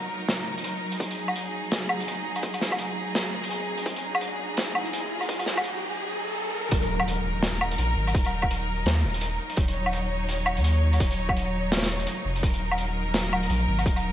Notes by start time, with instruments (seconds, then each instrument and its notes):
Already playing: sub bass D#1, string section F#3 D#4 A#4
0.20 shaker
0.29 snare, closed hi-hat
0.58 closed hi-hat
0.64 closed hi-hat
0.92 closed hi-hat, shaker
1.00 sub bass D#1, string section G#4, kick, closed hi-hat, riser
1.11 closed hi-hat
1.18 shaker
1.28 low woodblock, shaker
1.36 closed hi-hat
1.64 shaker
1.72 snare, closed hi-hat
1.89 low woodblock
2.00 closed hi-hat
2.07 sub bass A#1, closed hi-hat
2.25 sub bass G#1
2.36 closed hi-hat, low woodblock
2.43 sub bass D#1, kick, closed hi-hat
2.54 closed hi-hat, low woodblock
2.61 snare, shaker
2.72 kick, low woodblock, shaker
2.79 closed hi-hat
3.07 shaker
3.14 sub bass D#2, snare, closed hi-hat
3.32 sub bass D#1
3.44 closed hi-hat
3.50 closed hi-hat
3.78 closed hi-hat, shaker
3.80 shaker
3.82 shaker
3.84 shaker
3.86 kick, closed hi-hat, shaker
3.88 shaker
3.91 shaker
3.94 closed hi-hat, shaker
4.05 shaker
4.15 low woodblock, shaker
4.21 closed hi-hat
4.57 snare, closed hi-hat
4.75 low woodblock
4.85 sub bass D#2, closed hi-hat
4.93 closed hi-hat
5.21 closed hi-hat, low woodblock
5.29 sub bass D#1, kick, closed hi-hat
5.39 closed hi-hat, low woodblock
5.46 snare, shaker
5.57 kick, low woodblock, shaker
5.64 closed hi-hat
5.93 shaker
6.71 sub bass D#1, string section F#3 D#4 A#4, kick, closed hi-hat, impact
6.82 closed hi-hat, shaker
7.00 low woodblock
7.08 closed hi-hat
7.43 snare, closed hi-hat
7.54 shaker
7.61 low woodblock, shaker
7.71 closed hi-hat
7.78 sub bass A#1, closed hi-hat
7.97 sub bass G#1
8.07 closed hi-hat, low woodblock
8.15 sub bass D#1, kick, closed hi-hat
8.24 closed hi-hat, low woodblock
8.42 kick, low woodblock
8.51 closed hi-hat
8.86 sub bass D#2, snare, closed hi-hat
8.96 shaker
9.01 shaker
9.03 sub bass D#1, shaker
9.07 shaker
9.09 shaker
9.14 closed hi-hat
9.21 closed hi-hat
9.50 closed hi-hat
9.57 sub bass D#1, string section C#5, kick, closed hi-hat
9.68 closed hi-hat, shaker
9.86 low woodblock
9.93 closed hi-hat
10.29 closed hi-hat
10.39 shaker
10.46 low woodblock, shaker
10.57 sub bass D#2, closed hi-hat
10.64 closed hi-hat
10.93 closed hi-hat, low woodblock
11.00 sub bass D#1, kick, closed hi-hat
11.11 closed hi-hat
11.29 kick, low woodblock
11.37 closed hi-hat
11.72 snare, closed hi-hat
11.77 snare
11.82 snare, shaker
11.86 snare
12.00 closed hi-hat
12.07 closed hi-hat
12.25 sub bass F1
12.36 closed hi-hat
12.43 sub bass D#1, string section A#4, kick, closed hi-hat
12.53 closed hi-hat, shaker
12.71 low woodblock
12.78 closed hi-hat
13.14 snare, closed hi-hat
13.25 shaker
13.32 low woodblock, shaker
13.43 closed hi-hat
13.50 sub bass A#1, closed hi-hat
13.68 sub bass G#1
13.79 closed hi-hat, low woodblock
13.86 sub bass D#1, kick, closed hi-hat
13.96 closed hi-hat, low woodblock